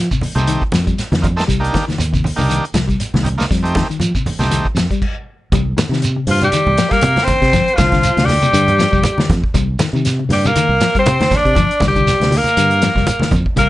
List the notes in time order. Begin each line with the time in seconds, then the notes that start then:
0.11 C3, kick, closed hi-hat, shekere
0.21 muted fingered electric bass stroke, open hi-hat, low conga, shekere
0.35 C2 C3 A3 C4 D#4 G4, closed hi-hat, high conga, shekere
0.47 D#3, closed hi-hat, shekere
0.62 kick
0.72 F2 F3, snare, closed hi-hat, high conga, shekere
0.87 G3, kick, closed hi-hat, shekere
0.98 snare, closed hi-hat, shekere
1.12 F2 D#3, snare, closed hi-hat, high conga
1.22 D#4 F4, kick, closed hi-hat, low conga, shekere
1.36 A3 C4 D#4 A4, snare, closed hi-hat, shekere
1.47 C2 G3, kick, closed hi-hat, shekere
1.60 A#3 D4 D#4 G4
1.64 closed hi-hat
1.73 D#3, kick, snare, closed hi-hat, high conga
1.88 D#3, snare, closed hi-hat, high conga, shekere
1.98 D#2, closed hi-hat, low conga, shekere
2.13 C3, kick, closed hi-hat, shekere
2.24 open hi-hat, low conga, shekere
2.36 C2 C3 A#3 D4 D#4 G4, high conga, shekere
2.50 D#3, closed hi-hat, shekere
2.65 closed hi-hat
2.74 C2 F3, snare, closed hi-hat, high conga, shekere
2.88 G3, kick, closed hi-hat, shekere
3.00 closed hi-hat, shekere
3.14 C2 D#3, snare, high conga
3.23 D#4 G4, closed hi-hat, low conga, shekere
3.38 A#3 D4 D#4 F4, snare, closed hi-hat, high conga, shekere
3.51 F2 G3, kick, snare, closed hi-hat, shekere
3.63 A3 C4 D#4 G4, closed hi-hat
3.75 D#3, kick, snare, closed hi-hat, high conga
3.90 D#3, muted fingered electric bass stroke, closed hi-hat, shekere
4.00 F3, closed hi-hat, low conga, shekere
4.15 C3, kick, closed hi-hat, shekere
4.26 muted fingered electric bass stroke, open hi-hat, low conga, shekere
4.39 C2 C3 A3 C4 D#4 G4, snare, closed hi-hat, high conga, shekere
4.51 D#3, closed hi-hat, high conga, shekere
4.65 kick
4.75 F2 F3, snare, closed hi-hat, high conga, shekere
4.91 G3, kick, closed hi-hat, shekere
5.02 kick, crash
5.52 C2 G3, kick, closed hi-hat, low conga, shekere
5.77 D#3, snare, closed hi-hat, high conga, shekere
5.89 C3 D#3, snare
5.94 shekere
6.02 closed hi-hat, shekere
6.16 C3
6.27 G2 F3, open hi-hat, high conga, shekere
6.31 F4
6.41 C3 G3 G4, closed hi-hat, high conga, shekere
6.52 D#3, muted fingered electric bass stroke, closed hi-hat, high conga, shekere
6.67 C2, low conga
6.77 F3, snare, closed hi-hat, shekere
6.90 G3 A#3 A#4, muted fingered electric bass stroke, kick, snare, closed hi-hat, shekere
7.01 C3, closed hi-hat, high conga, shekere
7.16 snare, closed hi-hat, high conga
7.23 C4 C5, muted fingered electric bass stroke
7.28 kick, closed hi-hat, high conga, low conga, shekere
7.42 C3, kick, snare, closed hi-hat
7.53 G1 F3, kick, snare, closed hi-hat, low conga, shekere
7.68 closed hi-hat
7.74 C2 F3 F4, kick, high conga, shekere
7.79 D3, snare, closed hi-hat
7.92 D3, kick, snare, closed hi-hat, shekere
8.03 closed hi-hat, shekere
8.17 D2 C3, snare, closed hi-hat
8.25 G3 G4, high conga, shekere
8.29 snare, open hi-hat
8.42 C3, closed hi-hat, high conga, shekere
8.53 G2 D3, closed hi-hat, high conga, shekere
8.68 closed hi-hat, low conga
8.79 F3, snare, closed hi-hat, shekere
8.92 F1 G3, kick, shekere
9.03 closed hi-hat, high conga, shekere
9.18 D#3, muted fingered electric bass stroke, snare, high conga
9.29 F2, kick, snare, closed hi-hat, low conga, shekere
9.44 kick
9.54 C2 G3, kick, closed hi-hat, low conga, shekere
9.79 D#3, snare, closed hi-hat, high conga, shekere
9.93 C3 D#3, shekere
10.05 snare, closed hi-hat, shekere
10.19 C3
10.29 G2 G3 G4, snare, open hi-hat, high conga, shekere
10.44 C3 A#3 A#4, closed hi-hat, high conga, shekere
10.56 D#3, muted fingered electric bass stroke, closed hi-hat, high conga, shekere
10.69 C2
10.81 F3, snare, closed hi-hat, shekere
10.95 G3 C4, muted fingered electric bass stroke, kick, closed hi-hat, shekere
10.99 C5
11.06 C3, closed hi-hat, high conga, shekere
11.20 D#3, snare, closed hi-hat, high conga
11.31 muted fingered electric bass stroke, kick, snare, closed hi-hat, high conga, low conga, shekere
11.35 D4 D5
11.45 C3, kick, closed hi-hat
11.55 G1 F3, kick, closed hi-hat, low conga, shekere
11.71 muted fingered electric bass stroke, closed hi-hat
11.80 C2 D3, kick, snare, closed hi-hat, high conga, shekere
11.87 G3 G4
11.96 D3, kick, closed hi-hat, shekere
12.08 snare, closed hi-hat, shekere
12.20 D2 C3, snare, closed hi-hat
12.31 open hi-hat, high conga, shekere
12.36 A#3 A#4
12.44 closed hi-hat, high conga, shekere
12.57 G2 D3, closed hi-hat, shekere
12.71 closed hi-hat
12.82 F3, snare, closed hi-hat, shekere
12.95 F1 G3, kick, snare, shekere
13.07 closed hi-hat, high conga, shekere
13.20 D#3, muted fingered electric bass stroke, snare, high conga
13.31 F2, kick, closed hi-hat, high conga, low conga, shekere
13.46 kick
13.56 C2 G3 A#3 A#4, kick, closed hi-hat, low conga, shekere